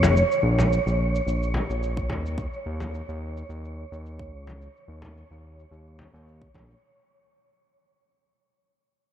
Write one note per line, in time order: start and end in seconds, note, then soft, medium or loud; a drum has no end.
0.00 0.23 F1 medium
0.00 6.84 C#5 medium
0.00 frame drum medium
0.00 shaker medium
0.17 shaker soft
0.32 shaker soft
0.43 0.79 A#1 medium
0.58 frame drum medium
0.58 shaker medium
0.73 shaker soft
0.86 1.21 A#1 medium
0.86 shaker soft
1.15 shaker medium
1.27 1.62 A#1 medium
1.27 shaker soft
1.43 shaker soft
1.54 frame drum medium
1.70 2.11 A#1 medium
1.70 shaker medium
1.83 shaker medium
1.97 kick medium
1.97 shaker soft
2.10 2.46 D#2 medium
2.10 kick soft
2.10 frame drum medium
2.26 shaker medium
2.38 kick loud
2.38 shaker soft
2.53 shaker soft
2.66 3.02 D#2 medium
2.80 frame drum medium
2.80 shaker medium
2.94 shaker soft
3.09 3.43 D#2 medium
3.09 shaker soft
3.37 shaker medium
3.49 3.85 D#2 medium
3.49 shaker soft
3.65 shaker soft
3.92 4.34 D#2 medium
3.92 shaker medium
4.06 shaker soft
4.19 kick medium
4.19 shaker soft
4.32 4.68 C#2 medium
4.47 frame drum medium
4.47 shaker medium
4.62 shaker soft
4.77 shaker soft
4.88 5.24 D#2 medium
5.02 frame drum medium
5.02 shaker medium
5.17 shaker soft
5.31 5.65 D#2 medium
5.31 shaker soft
5.59 shaker medium
5.71 6.07 D#2 medium
5.71 shaker soft
5.87 shaker soft
5.99 frame drum medium
6.13 6.48 D#2 medium
6.13 shaker medium
6.28 shaker soft
6.42 kick medium
6.42 shaker soft
6.54 6.75 A#1 medium
6.54 kick medium
6.54 frame drum medium
6.70 shaker medium